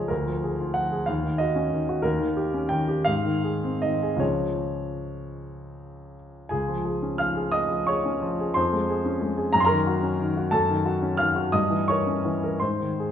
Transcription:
0.00 0.12 C#2 soft
0.00 0.12 F3 soft
0.00 0.12 F4 soft
0.00 0.12 G#4 soft
0.00 0.12 C#5 medium
0.00 0.12 D#5 soft
0.08 1.05 D2 soft
0.08 0.75 A#4 medium
0.26 0.52 F3 soft
0.44 0.69 G#4 soft
0.60 0.86 F4 soft
0.74 1.01 F3 soft
0.74 1.07 F#5 medium
0.92 1.08 G#4 soft
1.06 2.01 D#2 soft
1.06 1.39 F5 medium
1.23 1.49 D#3 soft
1.38 1.65 F#4 soft
1.38 2.03 D#5 medium
1.56 1.81 C#4 soft
1.72 1.98 D#3 soft
1.89 2.05 F#4 soft
2.02 3.05 D#2 soft
2.02 2.72 A#4 medium
2.19 2.47 D#3 soft
2.37 2.65 G4 soft
2.54 2.83 C#4 soft
2.69 3.00 D#3 soft
2.69 3.06 G5 medium
2.88 3.07 G4 soft
3.05 4.17 G#2 soft
3.05 3.81 F5 medium
3.25 3.55 D#3 soft
3.44 3.75 G#4 soft
3.64 3.95 C4 soft
3.82 4.14 D#3 soft
3.82 4.21 D#5 medium
4.03 4.19 G#4 soft
4.16 6.45 C#2 soft
4.16 6.46 F3 soft
4.16 6.47 C#4 soft
4.16 6.14 C#5 medium
4.20 6.47 G#4 soft
6.49 8.53 C#2 soft
6.49 6.84 G#4 soft
6.49 7.20 G#5 medium
6.68 6.97 F3 soft
6.85 7.14 G#4 soft
7.02 7.31 C#4 soft
7.18 7.48 F3 soft
7.18 7.52 F5 soft
7.18 7.54 F6 medium
7.36 7.87 G#4 soft
7.52 7.85 D#5 medium
7.52 7.88 D#6 medium
7.71 7.99 F3 soft
7.87 8.17 G#4 soft
7.87 8.53 C#5 medium
7.87 8.56 C#6 medium
8.05 8.34 C#4 soft
8.22 8.50 F3 soft
8.40 8.57 G#4 soft
8.54 9.51 F2 soft
8.54 9.50 C5 medium
8.54 9.53 C6 medium
8.73 8.99 G#3 soft
8.89 9.16 G#4 soft
9.05 9.32 C#4 soft
9.21 9.48 G#3 soft
9.37 9.54 G#4 soft
9.53 10.51 F#2 medium
9.53 9.60 A#5 medium
9.60 9.68 C6 medium
9.65 10.49 A#4 medium
9.65 10.52 A#5 medium
9.70 9.97 D#3 soft
9.87 10.14 F#4 soft
10.03 10.30 C#4 soft
10.20 10.47 D#3 soft
10.37 10.54 F#4 soft
10.51 11.49 F#2 soft
10.51 11.15 A4 medium
10.51 11.18 A5 medium
10.69 10.96 D#3 soft
10.86 11.12 F#4 soft
11.03 11.29 C#4 soft
11.17 11.46 D#3 soft
11.17 11.50 F5 medium
11.17 11.52 F6 medium
11.36 11.53 F#4 soft
11.52 12.57 G2 soft
11.52 11.85 D#5 soft
11.52 11.88 D#6 medium
11.70 11.99 E3 soft
11.88 12.17 A#4 soft
11.88 12.57 C#5 medium
11.88 12.60 C#6 medium
12.07 12.35 C#4 soft
12.25 12.54 E3 soft
12.44 12.61 A#4 soft
12.60 13.12 G#2 soft
12.60 13.12 C5 soft
12.60 13.12 C6 medium
12.80 13.09 D#3 soft
13.00 13.12 G#4 soft

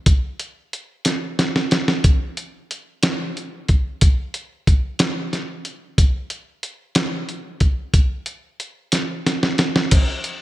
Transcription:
0.06 kick medium
0.06 closed hi-hat medium
0.40 closed hi-hat soft
0.73 closed hi-hat soft
1.05 snare soft
1.05 closed hi-hat medium
1.39 snare medium
1.39 closed hi-hat soft
1.56 snare medium
1.71 snare medium
1.71 closed hi-hat soft
1.88 snare medium
2.04 kick medium
2.04 closed hi-hat medium
2.37 closed hi-hat soft
2.71 closed hi-hat soft
3.03 snare medium
3.03 closed hi-hat medium
3.37 closed hi-hat soft
3.68 kick medium
3.68 closed hi-hat soft
4.01 kick medium
4.01 closed hi-hat medium
4.34 closed hi-hat soft
4.67 kick medium
4.67 closed hi-hat soft
4.99 snare medium
4.99 closed hi-hat medium
5.33 snare soft
5.33 closed hi-hat soft
5.65 closed hi-hat soft
5.98 kick medium
5.98 closed hi-hat medium
6.30 closed hi-hat soft
6.63 closed hi-hat soft
6.95 snare medium
6.95 closed hi-hat medium
7.29 closed hi-hat soft
7.60 kick medium
7.60 closed hi-hat soft
7.94 kick medium
7.94 closed hi-hat medium
8.26 closed hi-hat soft
8.60 closed hi-hat soft
8.92 snare soft
8.92 closed hi-hat medium
9.26 snare medium
9.26 closed hi-hat soft
9.43 snare medium
9.58 snare medium
9.58 closed hi-hat soft
9.76 snare medium
9.91 kick medium
9.91 closed hi-hat medium
9.91 crash medium
10.24 closed hi-hat soft

